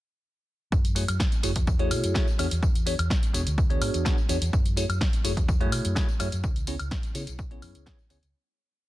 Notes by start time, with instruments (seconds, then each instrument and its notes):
0.72 fingered electric bass F#2, kick, tambourine
0.85 closed hi-hat, tambourine
0.95 tine electric piano A3 E4 F#4 G#4 C#5, open hi-hat, tambourine
1.08 fingered electric bass F#2, closed hi-hat, tambourine, high woodblock
1.20 kick, snare, tambourine
1.32 closed hi-hat, tambourine
1.43 fingered electric bass F#1, tine electric piano A3 E4 F#4 G#4 C#5, open hi-hat, tambourine
1.56 fingered electric bass E2, kick, closed hi-hat, tambourine
1.67 kick, tambourine
1.79 tine electric piano A3 E4 F#4 G#4 C#5, closed hi-hat
1.91 fingered electric bass B2, open hi-hat, tambourine, high woodblock
2.04 fingered electric bass F#2, closed hi-hat, tambourine
2.14 tine electric piano A3 E4 F#4 G#4 C#5, kick, snare, tambourine
2.28 tambourine
2.38 fingered electric bass E2, tine electric piano B3 D4 F#4 G#4 C#5, open hi-hat, tambourine, high woodblock
2.51 fingered electric bass E2, closed hi-hat, tambourine
2.63 kick, tambourine
2.75 closed hi-hat, tambourine
2.86 tine electric piano B3 D4 F#4 G#4 C#5, open hi-hat, tambourine
2.99 fingered electric bass E2, closed hi-hat, tambourine, high woodblock
3.10 kick, snare, tambourine
3.23 closed hi-hat, tambourine
3.33 fingered electric bass E1, tine electric piano B3 D4 F#4 G#4 C#5, open hi-hat, tambourine
3.46 fingered electric bass D2, closed hi-hat, tambourine
3.58 kick, tambourine
3.70 tine electric piano B3 D4 F#4 G#4 C#5, closed hi-hat
3.82 fingered electric bass G#2, open hi-hat, tambourine, high woodblock
3.94 fingered electric bass E2, closed hi-hat, tambourine
4.05 tine electric piano B3 D4 F#4 G#4 C#5, kick, snare, tambourine
4.18 tambourine
4.29 fingered electric bass E2, tine electric piano B3 D4 F#4 G#4 C#5, open hi-hat, tambourine
4.41 fingered electric bass E2, closed hi-hat, tambourine
4.53 kick, tambourine
4.66 closed hi-hat, tambourine
4.77 tine electric piano A3 E4 F#4 G#4 C#5, open hi-hat, tambourine
4.89 fingered electric bass F#2, closed hi-hat, tambourine, high woodblock
5.01 kick, snare, tambourine
5.13 closed hi-hat, tambourine
5.24 fingered electric bass F#1, tine electric piano A3 E4 F#4 G#4 C#5, open hi-hat, tambourine
5.37 fingered electric bass E2, kick, closed hi-hat, tambourine
5.49 kick, tambourine
5.60 tine electric piano A3 E4 F#4 G#4 C#5, closed hi-hat
5.72 fingered electric bass B2, open hi-hat, tambourine, high woodblock
5.85 fingered electric bass F#2, closed hi-hat, tambourine
5.95 tine electric piano A3 E4 F#4 G#4 C#5, kick, snare, tambourine
6.09 tambourine
6.20 fingered electric bass F#2, tine electric piano A3 E4 F#4 G#4 C#5, open hi-hat, tambourine, high woodblock
6.32 fingered electric bass F#2, closed hi-hat, tambourine
6.44 kick, tambourine
6.56 closed hi-hat, tambourine
6.67 tine electric piano B3 C#4 E4 G#4 C#5, open hi-hat, tambourine
6.79 fingered electric bass C#2, closed hi-hat, tambourine, high woodblock
6.91 kick, snare, tambourine
7.03 closed hi-hat, tambourine
7.15 fingered electric bass C#3, tine electric piano B3 C#4 E4 G#4 C#5, open hi-hat, tambourine
7.27 fingered electric bass B1, closed hi-hat, tambourine
7.39 kick, tambourine
7.51 tine electric piano B3 C#4 E4 G#4 C#5, closed hi-hat
7.62 fingered electric bass F#2, open hi-hat, tambourine, high woodblock
7.75 fingered electric bass C#2, closed hi-hat, tambourine
7.86 tine electric piano B3 C#4 E4 G#4 C#5, kick, snare, tambourine
7.99 tambourine
8.10 fingered electric bass C#2, tine electric piano B3 C#4 E4 G#4 C#5, open hi-hat, tambourine
8.23 fingered electric bass C#2, closed hi-hat, tambourine